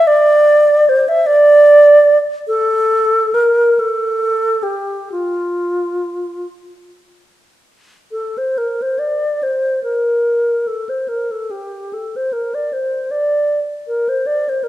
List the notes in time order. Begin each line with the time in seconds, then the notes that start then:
0.07 D5
0.89 C5
1.08 E5
1.26 D5
2.47 A4
3.34 A#4
3.79 A4
4.63 G4
5.12 F4
8.11 A4
8.38 C5
8.58 A#4
8.82 C5
8.99 D5
9.43 C5
9.84 A#4
10.67 A4
10.89 C5
11.08 A#4
11.31 A4
11.51 G4
11.93 A4
12.16 C5
12.33 A#4
12.54 D5
12.73 C5
13.11 D5
13.87 A#4
14.09 C5
14.26 D5
14.49 C5
14.64 A#4